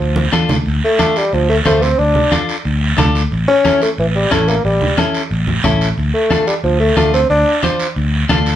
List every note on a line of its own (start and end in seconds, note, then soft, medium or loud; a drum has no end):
0.00 0.26 D2 medium
0.00 0.29 F3 medium
0.00 long guiro medium
0.16 high conga medium
0.33 0.48 E2 medium
0.33 0.56 D4 medium
0.33 0.56 F4 medium
0.33 0.56 A4 medium
0.33 high conga medium
0.33 short guiro medium
0.49 0.65 D2 medium
0.49 low conga medium
0.49 short guiro medium
0.66 0.80 D2 loud
0.66 long guiro medium
0.85 1.18 A3 loud
0.99 1.23 D4 medium
0.99 1.23 F4 soft
0.99 1.23 A4 medium
0.99 high conga medium
0.99 short guiro medium
1.16 1.35 G3 medium
1.16 short guiro medium
1.33 1.59 D2 loud
1.33 1.49 F3 medium
1.33 long guiro medium
1.49 1.57 A3 loud
1.65 1.93 D2 medium
1.65 1.84 A3 loud
1.65 1.89 D4 medium
1.65 1.89 F4 medium
1.65 1.89 C5 medium
1.65 high conga medium
1.65 short guiro medium
1.82 2.00 C4 loud
1.82 short guiro medium
1.99 2.12 D2 loud
1.99 2.32 D4 loud
1.99 long guiro medium
2.15 low conga medium
2.32 2.55 D4 medium
2.32 2.56 F4 medium
2.32 2.56 A4 medium
2.32 high conga medium
2.32 short guiro medium
2.49 short guiro medium
2.65 2.92 D2 loud
2.65 long guiro medium
2.98 3.25 D2 medium
2.98 3.22 D4 medium
2.98 3.22 F4 medium
2.98 3.22 A4 loud
2.98 high conga medium
2.98 low conga medium
2.98 short guiro medium
3.15 short guiro medium
3.32 3.45 A1 loud
3.32 long guiro medium
3.48 3.79 C#4 loud
3.65 3.88 C#4 medium
3.65 3.88 E4 soft
3.65 3.89 A4 medium
3.65 high conga medium
3.65 short guiro medium
3.82 3.90 A3 loud
3.82 short guiro medium
3.98 4.25 A1 medium
3.98 4.06 E3 medium
3.98 long guiro medium
4.16 4.33 G3 medium
4.31 4.58 A1 medium
4.31 4.50 A3 medium
4.31 4.54 C#4 medium
4.31 4.55 E4 medium
4.31 4.55 A4 medium
4.31 high conga medium
4.31 short guiro medium
4.48 4.64 A#3 medium
4.48 short guiro medium
4.65 4.78 A1 medium
4.65 4.96 G3 medium
4.65 long guiro medium
4.81 low conga medium
4.98 5.21 C#4 medium
4.98 5.21 E4 medium
4.98 5.21 A4 medium
4.98 high conga medium
4.98 short guiro medium
5.14 short guiro medium
5.31 5.57 A1 medium
5.31 long guiro medium
5.47 high conga medium
5.64 5.91 A1 medium
5.64 5.87 C#4 medium
5.64 5.88 E4 medium
5.64 5.88 A4 medium
5.64 high conga medium
5.64 low conga medium
5.64 short guiro medium
5.81 short guiro medium
5.97 6.11 D2 loud
5.97 long guiro medium
6.14 6.45 A3 medium
6.30 6.54 D4 medium
6.30 6.54 F4 medium
6.30 6.54 A4 medium
6.30 high conga medium
6.30 short guiro medium
6.47 6.55 G3 medium
6.47 short guiro medium
6.64 6.90 D2 loud
6.64 6.79 F3 medium
6.64 long guiro medium
6.80 6.95 A3 medium
6.97 7.23 D2 medium
6.97 7.13 A3 loud
6.97 7.20 D4 medium
6.97 7.20 F4 medium
6.97 7.20 A4 medium
6.97 high conga medium
6.97 short guiro medium
7.14 7.29 C4 loud
7.14 short guiro medium
7.30 7.43 D2 loud
7.30 7.61 D4 loud
7.30 long guiro medium
7.63 7.86 D4 medium
7.63 7.86 F4 medium
7.63 7.87 C5 medium
7.63 high conga medium
7.63 short guiro medium
7.79 short guiro medium
7.96 8.23 D2 loud
7.96 long guiro medium
8.29 8.56 D2 medium
8.29 8.53 D4 medium
8.29 8.53 F4 medium
8.29 8.53 A4 loud
8.29 high conga medium
8.29 low conga medium
8.29 short guiro medium
8.46 short guiro medium